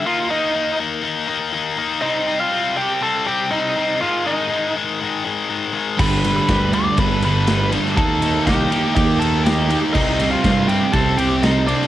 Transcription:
0.06 distorted electric guitar D#3 A#3 D#4, lead electric guitar F4 F5
0.30 distorted electric guitar D#3 A#3 D#4, lead electric guitar D#4 D#5
0.55 distorted electric guitar D#3 A#3 D#4
0.79 distorted electric guitar D#3 A#3 D#4
1.03 distorted electric guitar D#3 A#3 D#4
1.28 distorted electric guitar D#3 A#3 D#4
1.53 distorted electric guitar D#3 A#3 D#4
1.77 distorted electric guitar D#3 A#3 D#4
2.01 distorted electric guitar C3 G3 C4, lead electric guitar D#4 D#5
2.27 distorted electric guitar C3 G3 C4
2.39 lead electric guitar F4 F5
2.52 distorted electric guitar C3 G3 C4
2.76 distorted electric guitar C3 G3 C4, lead electric guitar G4 G5
3.01 distorted electric guitar C3 G3 C4, lead electric guitar A4 A5
3.26 distorted electric guitar C3 G3 C4, lead electric guitar G4 G5
3.51 distorted electric guitar C3 G3 C4, lead electric guitar D#4 D#5
3.77 distorted electric guitar C3 G3 C4
4.01 distorted electric guitar G#2 D#3 G#3, lead electric guitar F4 F5
4.25 distorted electric guitar G#2 D#3 G#3, lead electric guitar D#4 D#5
4.51 distorted electric guitar G#2 D#3 G#3
4.76 distorted electric guitar G#2 D#3 G#3
5.00 distorted electric guitar G#2 D#3 G#3
5.25 distorted electric guitar G#2 D#3 G#3
5.49 distorted electric guitar G#2 D#3 G#3
5.73 distorted electric guitar G#2 D#3 G#3
5.98 fingered electric bass G1, distorted electric guitar G2 D3 G3, lead electric guitar B4 B5, kick, crash
6.24 distorted electric guitar G2 D3 G3, snare, ride
6.36 lead electric guitar B4 B5
6.49 fingered electric bass D2, distorted electric guitar G2 D3 G3, kick, snare, ride
6.73 distorted electric guitar G2 D3 G3, lead electric guitar D5 D6, ride
6.98 fingered electric bass G1, distorted electric guitar G2 D3 G3, lead electric guitar B4 B5, kick, ride
7.22 distorted electric guitar G2 D3 G3, lead electric guitar B4 B5, ride
7.47 distorted electric guitar G2 D3 G3, snare, ride
7.72 distorted electric guitar G2 D3 G3, ride
7.86 snare
7.97 fingered electric bass D#2, distorted electric guitar D#3 A#3 D#4, lead electric guitar A4 A5, kick, ride
8.22 distorted electric guitar D#3 A#3 D#4, ride
8.46 fingered electric bass C2, distorted electric guitar D#3 A#3 D#4, lead electric guitar G4 G5, kick, snare, ride
8.70 distorted electric guitar D#3 A#3 D#4, ride
8.95 fingered electric bass D#2, distorted electric guitar D#3 A#3 D#4, lead electric guitar G4 G5, kick, ride
9.19 distorted electric guitar D#3 A#3 D#4, lead electric guitar A4 A5, ride
9.44 distorted electric guitar D#3 A#3 D#4, lead electric guitar G4 G5, snare, ride
9.70 distorted electric guitar D#3 A#3 D#4, ride
9.94 fingered electric bass C2, distorted electric guitar C3 G3 C4, lead electric guitar D#4 D#5, kick, crash
10.19 distorted electric guitar C3 G3 C4, snare, ride
10.31 lead electric guitar F4 F5
10.44 fingered electric bass G2, distorted electric guitar C3 G3 C4, kick, snare, ride
10.68 distorted electric guitar C3 G3 C4, lead electric guitar G4 G5, ride
10.93 fingered electric bass C2, distorted electric guitar C3 G3 C4, lead electric guitar A4 A5, kick, ride
11.18 distorted electric guitar C3 G3 C4, lead electric guitar G4 G5, ride
11.43 distorted electric guitar C3 G3 C4, lead electric guitar D#4 D#5, snare, ride
11.67 distorted electric guitar C3 G3 C4, lead electric guitar D4 D5, ride
11.81 snare

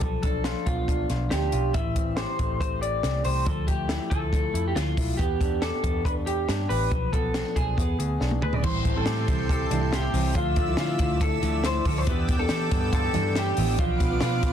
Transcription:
Already playing: clean electric guitar A4
0.01 clean electric guitar F3, kick, closed hi-hat
0.23 clean electric guitar D4 A4, kick, closed hi-hat
0.44 clean electric guitar F4, snare, closed hi-hat
0.66 picked electric bass B1, clean electric guitar B3 F4, kick, closed hi-hat
0.88 clean electric guitar D4, kick, closed hi-hat
1.10 picked electric bass B1, clean electric guitar F4, snare, closed hi-hat
1.30 picked electric bass D2, clean electric guitar D4 G4, snare, closed hi-hat
1.52 picked electric bass B1, clean electric guitar F4, closed hi-hat
1.74 picked electric bass A1, clean electric guitar E3 E5, kick, closed hi-hat
1.95 clean electric guitar C4, kick, closed hi-hat
2.16 clean electric guitar G4 C5, snare, closed hi-hat
2.38 picked electric bass A1, clean electric guitar A3, kick, closed hi-hat
2.60 clean electric guitar C4 C5, kick, closed hi-hat
2.81 clean electric guitar G4 D5, closed hi-hat
3.03 picked electric bass C2, clean electric guitar C4, snare, closed hi-hat
3.24 picked electric bass C2, clean electric guitar G4 C5, open hi-hat
3.45 picked electric bass D2, clean electric guitar F3 A4, kick, closed hi-hat
3.67 clean electric guitar A3 G4, kick, closed hi-hat
3.88 clean electric guitar E4, snare, closed hi-hat
4.10 picked electric bass D2, clean electric guitar F3 A4, kick, closed hi-hat
4.32 clean electric guitar A3, kick, closed hi-hat
4.54 picked electric bass F2, clean electric guitar E4, closed hi-hat
4.68 clean electric guitar G4
4.75 picked electric bass D2, clean electric guitar A3 F4, snare, closed hi-hat
4.97 picked electric bass B1, clean electric guitar E4, kick, open hi-hat
5.17 picked electric bass E2, clean electric guitar B3 G4, kick, closed hi-hat
5.40 clean electric guitar D4, kick, closed hi-hat
5.62 clean electric guitar G4 A4, snare, closed hi-hat
5.83 picked electric bass E2, clean electric guitar B3, kick, closed hi-hat
6.05 clean electric guitar D4 B4, kick, closed hi-hat
6.26 clean electric guitar G4, closed hi-hat
6.48 picked electric bass G2, clean electric guitar D4, snare, closed hi-hat
6.69 picked electric bass A1, clean electric guitar G4 B4, open hi-hat
6.91 picked electric bass B1, clean electric guitar F3, kick, closed hi-hat
7.12 clean electric guitar B3 A4, kick, closed hi-hat
7.34 clean electric guitar C4, snare, closed hi-hat
7.45 clean electric guitar D4
7.56 picked electric bass B1, clean electric guitar F3 G#4, kick, closed hi-hat
7.77 picked electric bass E2, clean electric guitar B3, kick, closed hi-hat
7.99 picked electric bass D2, clean electric guitar G#4, closed hi-hat
8.20 picked electric bass B1, clean electric guitar D4, snare
8.31 high tom
8.41 picked electric bass D2, clean electric guitar G#4 B4, mid tom
8.53 clean electric guitar D5, floor tom
8.62 picked electric bass A1, steel-string acoustic guitar A2 E3 G3 C4 E4, clean electric guitar E3 C5, analog synth pad A4 G5 C6, kick, crash
8.84 picked electric bass A1, clean electric guitar C4, kick, closed hi-hat
8.95 steel-string acoustic guitar A2 E3 G3 C4 E4, clean electric guitar A4
9.06 picked electric bass A2, clean electric guitar G4, snare, closed hi-hat
9.27 picked electric bass C2, steel-string acoustic guitar E3 G3 C4 E4, clean electric guitar C4, kick, closed hi-hat
9.49 clean electric guitar G4 A4, kick, closed hi-hat
9.70 picked electric bass C2, steel-string acoustic guitar A2 E3 G3 C4 E4, clean electric guitar D4, closed hi-hat
9.81 clean electric guitar E4
9.92 clean electric guitar F4 G4, snare, closed hi-hat
10.02 clean electric guitar G4
10.13 picked electric bass C2, steel-string acoustic guitar E3 G3 C4 E4, clean electric guitar C4, open hi-hat
10.34 picked electric bass D2, steel-string acoustic guitar D3 F3 A3, clean electric guitar F3 F4, analog synth pad D5 E5 E6, kick, closed hi-hat
10.56 picked electric bass D2, clean electric guitar F3, kick, closed hi-hat
10.68 steel-string acoustic guitar D3 F3 A3 E4
10.77 picked electric bass D3, clean electric guitar E4 F4, snare, closed hi-hat
10.99 picked electric bass D2, steel-string acoustic guitar D3 F3 A3 E4, clean electric guitar F3, kick, closed hi-hat
11.20 clean electric guitar E4 A4, kick, closed hi-hat
11.41 picked electric bass D2, steel-string acoustic guitar D3 F3 A3 E4, clean electric guitar A3, closed hi-hat
11.63 clean electric guitar E4 C5, snare, closed hi-hat
11.84 picked electric bass D2, steel-string acoustic guitar D3 F3 A3 E4, clean electric guitar F3 A4, kick, open hi-hat
11.98 clean electric guitar C5
12.06 picked electric bass E2, steel-string acoustic guitar E3 B3 D4 G4, clean electric guitar B3 B4, analog synth pad G5 E6, kick, closed hi-hat
12.28 picked electric bass E2, clean electric guitar B3, kick, closed hi-hat
12.38 steel-string acoustic guitar E3 B3 D4 G4, clean electric guitar A4
12.49 picked electric bass E3, clean electric guitar G4, snare, closed hi-hat
12.71 picked electric bass G2, steel-string acoustic guitar E3 B3 D4 G4, clean electric guitar B3, kick, closed hi-hat
12.93 clean electric guitar F4 A4, kick, closed hi-hat
13.04 clean electric guitar G4
13.13 picked electric bass G2, steel-string acoustic guitar E3 B3 D4 G4, clean electric guitar D4, snare, closed hi-hat
13.36 clean electric guitar G4, snare, closed hi-hat
13.57 picked electric bass A1, steel-string acoustic guitar E3 B3 D4 G4, clean electric guitar B3, open hi-hat
13.78 picked electric bass B1, steel-string acoustic guitar B2 F3 B3 D4, clean electric guitar F3 F4, analog synth pad B4 F5 D6, kick, closed hi-hat
14.00 picked electric bass B1, clean electric guitar B3, kick, closed hi-hat
14.11 steel-string acoustic guitar B2 F3 B3 D4
14.21 picked electric bass B2, clean electric guitar F4, snare, closed hi-hat
14.42 picked electric bass B1, steel-string acoustic guitar B2 F3 B3 D4, clean electric guitar B3, kick, closed hi-hat

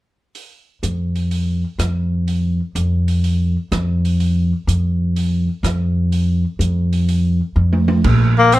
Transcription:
0.35 open hi-hat
0.83 upright bass F2, closed hi-hat
1.16 open hi-hat
1.31 open hi-hat
1.78 upright bass F2, cross-stick, closed hi-hat
2.28 open hi-hat
2.75 upright bass F2, closed hi-hat
3.08 open hi-hat
3.24 open hi-hat
3.72 upright bass F2, cross-stick, closed hi-hat
4.05 open hi-hat
4.20 open hi-hat
4.67 upright bass F2, closed hi-hat
5.16 open hi-hat
5.63 upright bass F2, cross-stick, closed hi-hat
6.12 open hi-hat
6.59 upright bass F2, closed hi-hat
6.93 open hi-hat
7.08 open hi-hat
7.56 upright bass F2
7.73 high tom
7.88 high tom
8.04 upright bass A#1, kick, crash
8.39 tenor saxophone A#3
8.52 tenor saxophone C4, closed hi-hat

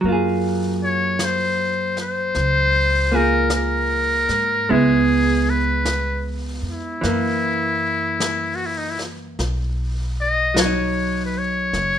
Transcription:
0.01 upright bass F#2, hollow-body jazz guitar F#3, brush sweep
0.05 hollow-body jazz guitar A#3 F4
0.12 hollow-body jazz guitar G#4
0.84 muted trumpet C#5
1.19 brush sweep, snare, hi-hat pedal
1.25 muted trumpet C5
1.97 snare
2.01 muted trumpet C5
2.35 upright bass C#2, brush sweep, snare
3.12 hollow-body jazz guitar A#3 F4 G#4
3.16 muted trumpet A#4
3.50 brush sweep, snare, hi-hat pedal
3.56 muted trumpet A#4
4.29 upright bass G#2, snare
4.68 upright bass C#2, hollow-body jazz guitar G#3 B3 E4, muted trumpet G#4, brush sweep
5.50 muted trumpet B4
5.85 brush sweep, snare, hi-hat pedal
6.62 upright bass F2
6.70 muted trumpet E4
7.01 upright bass F#2, hollow-body jazz guitar E3 A#3, brush sweep, snare
8.20 brush sweep, snare, hi-hat pedal
8.55 muted trumpet F#4
8.66 muted trumpet E4
8.77 muted trumpet D#4
8.90 muted trumpet E4
8.99 snare
9.39 upright bass B1, brush sweep, snare
10.20 muted trumpet D#5
10.54 hollow-body jazz guitar F#3, brush sweep, snare, hi-hat pedal
10.59 muted trumpet C#5
10.66 hollow-body jazz guitar D#4
11.26 muted trumpet B4
11.38 muted trumpet C#5
11.73 upright bass F#1, brush sweep, snare

